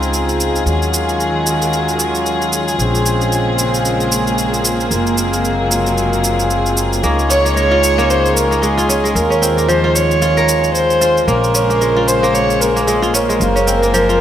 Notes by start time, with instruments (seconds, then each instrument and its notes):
Already playing: upright bass C#2, string section C#3 G#3 C4 F4 G#4, harmonium G#3 C4 D#4 F4, impact
0.03 cabasa
0.13 cabasa
0.29 cabasa
0.40 cabasa
0.56 cabasa
0.64 upright bass D#2, string section D#3, harmonium F#3 G#3 C#4 F4, cabasa
0.82 string section F#3, cabasa
0.94 cabasa
1.09 cabasa
1.20 cabasa
1.46 cabasa
1.62 cabasa
1.73 cabasa
1.89 cabasa
1.99 cabasa
2.15 cabasa
2.26 cabasa
2.42 cabasa
2.53 cabasa
2.68 cabasa
2.77 upright bass A#1, string section C#3, harmonium G#3 C4 C#4, cabasa
2.81 harmonium F4
2.89 string section G#3
2.95 cabasa
3.06 cabasa
3.21 string section A#3, cabasa
3.32 cabasa
3.58 cabasa
3.74 cabasa
3.85 cabasa
4.00 cabasa
4.12 cabasa
4.27 cabasa
4.38 cabasa
4.54 cabasa
4.65 cabasa
4.80 cabasa
4.89 upright bass F#1, string section C3, harmonium G#3 A#3 C4 F4, cabasa
5.05 string section F#3, cabasa
5.17 cabasa
5.33 cabasa
5.45 cabasa
5.71 cabasa
5.86 cabasa
5.98 cabasa
6.13 cabasa
6.24 cabasa
6.39 cabasa
6.50 cabasa
6.66 cabasa
6.77 cabasa
6.93 cabasa
7.01 upright bass C#2, string section C#3, harmonium G#3 D#4 F4 C#5, kora A#3, cabasa
7.14 string section G#3 C#5
7.19 cabasa
7.30 kora C#4, kamancheh C#5, cabasa
7.45 kora A#3, cabasa
7.56 kora G#3, kamancheh C#5, cabasa
7.71 kora F4
7.83 cabasa
7.98 kora A#3, cabasa
8.10 kamancheh C5, cabasa
8.26 cabasa
8.36 kamancheh A#4, cabasa
8.51 kora A#3, cabasa
8.56 kamancheh A#4
8.62 kora G#3, kamancheh G#4, cabasa
8.78 kora F4, cabasa
8.89 kora C#4, cabasa
9.04 kora G#3, cabasa
9.15 upright bass D#2, string section D#3, harmonium G#3 F4, kamancheh A#4, cabasa
9.30 kora C#4, cabasa
9.42 kora C4, cabasa
9.57 kora A#3, cabasa
9.68 kora F3, kamancheh C5, cabasa
9.84 kora F4
9.95 kamancheh C#5, cabasa
10.11 cabasa
10.22 kora F4, cabasa
10.37 kora A#4, cabasa
10.48 cabasa
10.64 cabasa
10.75 kamancheh C5, cabasa
10.90 cabasa
11.01 kora F4, cabasa
11.17 cabasa
11.26 upright bass A#1, string section C#3, harmonium G#3 C#4 F4 C5, kora A#3, kamancheh A#4, cabasa
11.44 cabasa
11.51 string section G#3, kora C#4, cabasa
11.70 kora A#3, cabasa
11.81 kora G#3, cabasa
11.86 string section A#3
11.96 kora F4
12.08 kamancheh C5, cabasa
12.23 kora A#3, cabasa
12.34 kamancheh C#5, cabasa
12.50 cabasa
12.61 kamancheh A#4, cabasa
12.76 kora A#3, cabasa
12.87 kora G#3, kamancheh G#4, cabasa
13.02 kora F4, cabasa
13.14 kora C#4, kamancheh A#4, cabasa
13.29 kora G#3, cabasa
13.38 upright bass F#1, harmonium G#3 A#3 F4 C5, cabasa
13.56 kora C#4, cabasa
13.67 kora C4, cabasa
13.82 kora A#3, cabasa
13.94 kora F3, cabasa
14.06 string section F4, kora F4, cabasa